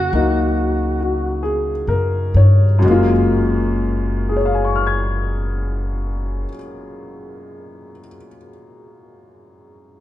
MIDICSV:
0, 0, Header, 1, 4, 480
1, 0, Start_track
1, 0, Key_signature, 6, "major"
1, 0, Tempo, 1290323
1, 529, Tempo, 1405152
1, 1009, Time_signature, 4, 2, 24, 8
1, 1009, Tempo, 1449275
1, 3386, End_track
2, 0, Start_track
2, 0, Title_t, "Alto saxophone"
2, 0, Program_c, 0, 65
2, 0, Note_on_c, 0, 66, 90
2, 536, Note_off_c, 0, 66, 0
2, 3386, End_track
3, 0, Start_track
3, 0, Title_t, "Upright piano"
3, 0, Program_c, 1, 0
3, 0, Control_c, 1, 64, 127
3, 0, Note_on_c, 1, 49, 45
3, 0, Note_on_c, 1, 58, 43
3, 0, Note_on_c, 1, 61, 43
3, 0, Note_on_c, 1, 77, 55
3, 45, Note_off_c, 1, 58, 0
3, 46, Note_on_c, 1, 54, 40
3, 50, Note_on_c, 1, 58, 36
3, 55, Note_on_c, 1, 63, 43
3, 374, Note_on_c, 1, 66, 38
3, 531, Note_on_c, 1, 68, 42
3, 624, Note_off_c, 1, 66, 0
3, 687, Note_on_c, 1, 70, 45
3, 834, Note_off_c, 1, 68, 0
3, 851, Note_on_c, 1, 73, 49
3, 942, Note_off_c, 1, 70, 0
3, 995, Note_on_c, 1, 42, 57
3, 1001, Note_off_c, 1, 54, 0
3, 1006, Note_on_c, 1, 54, 50
3, 1008, Note_off_c, 1, 49, 0
3, 1010, Note_off_c, 1, 58, 0
3, 1012, Note_off_c, 1, 63, 0
3, 1014, Note_off_c, 1, 61, 0
3, 1014, Control_c, 1, 64, 0
3, 1015, Note_on_c, 1, 56, 54
3, 1016, Note_off_c, 1, 77, 0
3, 1026, Note_on_c, 1, 58, 52
3, 1036, Note_on_c, 1, 65, 61
3, 1069, Control_c, 1, 64, 127
3, 1107, Note_off_c, 1, 73, 0
3, 1494, Note_on_c, 1, 68, 40
3, 1518, Note_on_c, 1, 73, 36
3, 1548, Note_on_c, 1, 77, 38
3, 1577, Note_on_c, 1, 80, 33
3, 1611, Note_on_c, 1, 85, 33
3, 1647, Note_on_c, 1, 89, 31
3, 1684, Note_on_c, 1, 92, 28
3, 2206, Note_off_c, 1, 42, 0
3, 2217, Note_off_c, 1, 54, 0
3, 2226, Note_off_c, 1, 56, 0
3, 2237, Note_off_c, 1, 58, 0
3, 2247, Note_off_c, 1, 65, 0
3, 2691, Note_off_c, 1, 68, 0
3, 2716, Note_off_c, 1, 73, 0
3, 2746, Note_off_c, 1, 77, 0
3, 2775, Note_off_c, 1, 80, 0
3, 2809, Note_off_c, 1, 85, 0
3, 2845, Note_off_c, 1, 89, 0
3, 2882, Note_off_c, 1, 92, 0
3, 3386, End_track
4, 0, Start_track
4, 0, Title_t, "Upright bass"
4, 0, Program_c, 2, 32
4, 48, Note_on_c, 2, 37, 68
4, 672, Note_off_c, 2, 37, 0
4, 683, Note_on_c, 2, 42, 53
4, 833, Note_off_c, 2, 42, 0
4, 844, Note_on_c, 2, 43, 65
4, 997, Note_off_c, 2, 43, 0
4, 1008, Note_on_c, 2, 30, 78
4, 2206, Note_off_c, 2, 30, 0
4, 3386, End_track
0, 0, End_of_file